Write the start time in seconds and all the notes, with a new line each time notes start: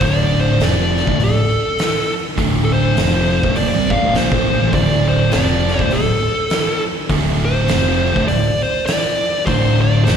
0.01 D1 D2 A2 D3 D5, kick, open hi-hat
0.41 C5
0.59 F1 F2 C3 F3, snare, open hi-hat
0.64 D5
0.97 snare
1.07 D1 D2 A2, kick
1.20 D1 D2 A2 A4, open hi-hat
1.79 snare, open hi-hat
2.38 D1 D2 A2 D3, kick, open hi-hat
2.65 A4
2.73 C5
2.97 F1 F2 C3 F3, snare, open hi-hat
3.43 D1 D2 A2, kick
3.55 D#1 D#2 A#2 D5, open hi-hat
3.74 C2 C3 G3
3.90 G#1 G#2 D#3 F5, kick
4.03 D1 D2 A2
4.14 A#1 A#2 F3 C5, snare, open hi-hat
4.32 D1 D2 A2, kick
4.50 A#1 A#2 F3
4.61 A1 A2 E3
4.72 D1 D2 A2 D3 D5, kick, open hi-hat
5.09 C5
5.32 F1 F2 C3 F3 D5, snare, open hi-hat
5.68 snare
5.79 D1 D2 A2 C5, kick
5.91 D1 D2 A2 A4, open hi-hat
6.50 snare, open hi-hat
7.09 D1 D2 A2 D3, kick, open hi-hat
7.45 C5
7.68 F1 F2 C3 F3, snare, open hi-hat
8.15 D1 D2 A2, kick
8.28 D1 D2 A2 D5, open hi-hat
8.63 C5
8.86 D5, snare, open hi-hat
9.46 D1 D2 A2 D3 C5, kick, open hi-hat
9.81 D5
10.05 F1 F2 C3 C5, snare, open hi-hat
10.09 F3